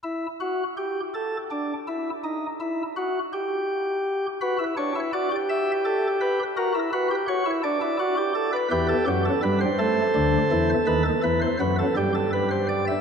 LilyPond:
<<
  \new Staff \with { instrumentName = "Pipe organ" } { \time 6/8 \key e \minor \tempo 4. = 55 << { e'8 fis'8 g'8 a'8 d'8 e'8 | dis'8 e'8 fis'8 g'4. | b'8 cis''8 d''8 e''8 a'8 b'8 | ais'8 b'8 cis''8 d''4. |
b'16 a'16 g'16 a'16 b'16 c''4.~ c''16 | b'16 a'16 b'16 c''16 b'16 a'16 g'16 a'16 b'16 c''16 d''16 e''16 | } \\ { r2. | r2. | fis'16 e'16 d'16 e'16 fis'16 g'4.~ g'16 | fis'16 e'16 fis'16 g'16 fis'16 e'16 d'16 e'16 fis'16 g'16 a'16 b'16 |
g'4. a'4.~ | a'2. | } >> }
  \new Staff \with { instrumentName = "Pipe organ" } { \clef bass \time 6/8 \key e \minor r2. | r2. | r2. | r2. |
<e, e>8 <fis, fis>8 <g, g>8 a8 <d, d>8 <e, e>8 | <dis, dis>8 <e, e>8 <fis, fis>8 <g, g>4. | }
>>